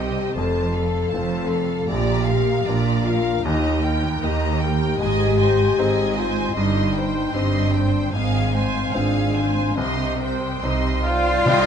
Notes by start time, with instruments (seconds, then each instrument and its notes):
Already playing: double bass section C2, grand piano C2 G3 C4 G4, cello section C3, violin section D#5
0.00 viola section G4, french horn section G4, violin section G5
0.35 double bass section F1, cello section F2, grand piano F2, viola section F4, french horn section A4, violin section C5 A5
0.73 violin section A4 F5, viola section A4
1.11 double bass section F1, cello section F2, grand piano A3 C4 F4, viola section F4, violin section C5 A5
1.48 violin section F5
1.52 viola section A4, violin section A4
1.89 double bass section A#1, grand piano A#1, cello section A#2, viola section F4, french horn section G4, violin section D5 A#5
2.27 viola section A#4, violin section F5
2.66 double bass section A#1, cello section A#2, grand piano A#3 D4 F4, viola section F4, violin section D5 A#5
3.04 french horn section F4, viola section A#4, violin section F5
3.43 double bass section D#2, cello section D#2, grand piano D#2, french horn section D#4, viola section G4, violin section D#5 A#5
3.82 viola section A#4, violin section G5
4.21 double bass section D#2, cello section D#2, grand piano A#3 D#4 G4, viola section G4, violin section D#5 A#5
4.60 french horn section G4, viola section A#4, violin section G5
4.99 double bass section G#1, cello section G#2, grand piano G#2, viola section G#4, violin section D#5 G#5
5.39 viola section C5, violin section D#5 G#5
5.77 double bass section G#1, cello section G#2, grand piano C4 D#4 C5, viola section G#4, violin section D#5 G#5
6.15 french horn section F4, viola section C5, violin section D#5 G#5
6.53 double bass section G1, cello section G2, grand piano G2, french horn section D#4, viola section G4, violin section D#5 C6
6.94 violin section C5 G5, viola section C5
7.31 double bass section G1, cello section G2, grand piano C4 G4, french horn section D4, viola section G4, violin section C6
7.35 grand piano C5, violin section D#5
7.73 viola section C5, violin section C5 G5
8.12 double bass section G#1, cello section G#2, grand piano G#2, french horn section C4, viola section G#4, violin section F5 G#5
8.54 viola section C5, violin section F5 G#5
8.93 double bass section G#1, cello section G#2, grand piano C4 F4 C5, french horn section D4, violin section F5 G#5
8.98 viola section G#4
9.37 viola section C5, violin section F5 G#5
9.77 grand piano C2, double bass section C2, cello section C3, french horn section C4, viola section G4, violin section D#5 C6
10.22 viola section C5, violin section C5 G5
10.62 double bass section C2, cello section C3, grand piano C4 D#4 C5, viola section G4, violin section D#5 C6
11.03 cello section F4, french horn section D5, oboe F5, flute section F5, violin section G5
11.07 violin section C5 F5, viola section C5
11.45 double bass section C2, grand piano C2, timpani C3, viola section C5, violin section D#5 G5